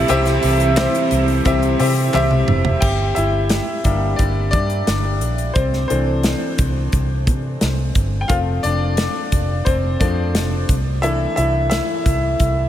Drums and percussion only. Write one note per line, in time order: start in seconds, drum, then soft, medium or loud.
0.08 hi-hat pedal medium
0.08 open hi-hat medium
0.25 snare soft
0.25 hi-hat pedal medium
0.25 open hi-hat soft
0.42 hi-hat pedal medium
0.42 open hi-hat medium
0.60 hi-hat pedal medium
0.60 open hi-hat medium
0.77 snare loud
0.77 clap medium
0.77 hi-hat pedal medium
0.77 open hi-hat medium
0.94 hi-hat pedal medium
1.11 hi-hat pedal medium
1.11 open hi-hat medium
1.28 open hi-hat soft
1.45 kick medium
1.45 hi-hat pedal medium
1.45 open hi-hat medium
1.62 hi-hat pedal medium
1.79 hi-hat pedal medium
1.79 open hi-hat medium
1.96 open hi-hat soft
2.14 clap medium
2.14 high tom medium
2.31 mid tom medium
2.48 mid tom medium
2.65 floor tom loud
2.82 kick medium
2.82 crash medium
3.16 closed hi-hat medium
3.49 snare medium
3.49 closed hi-hat medium
3.84 kick medium
3.84 closed hi-hat medium
4.19 kick medium
4.19 closed hi-hat medium
4.53 kick medium
4.53 closed hi-hat medium
4.70 closed hi-hat soft
4.87 snare medium
4.87 closed hi-hat medium
5.21 closed hi-hat medium
5.38 closed hi-hat medium
5.55 kick medium
5.55 closed hi-hat medium
5.73 snare soft
5.90 closed hi-hat medium
6.23 snare loud
6.23 closed hi-hat medium
6.58 kick medium
6.58 closed hi-hat medium
6.92 kick medium
6.92 closed hi-hat medium
7.27 kick medium
7.27 closed hi-hat medium
7.61 snare medium
7.61 closed hi-hat medium
7.95 kick medium
7.95 closed hi-hat medium
8.29 kick medium
8.29 closed hi-hat medium
8.64 closed hi-hat medium
8.97 snare loud
8.97 closed hi-hat medium
9.32 kick medium
9.32 closed hi-hat medium
9.66 kick medium
9.66 closed hi-hat medium
10.01 kick medium
10.01 closed hi-hat medium
10.35 snare medium
10.35 closed hi-hat medium
10.69 kick medium
10.69 closed hi-hat medium
11.03 closed hi-hat medium
11.37 closed hi-hat medium
11.71 snare loud
11.71 closed hi-hat medium
12.06 kick medium
12.06 closed hi-hat medium
12.40 kick medium
12.40 closed hi-hat medium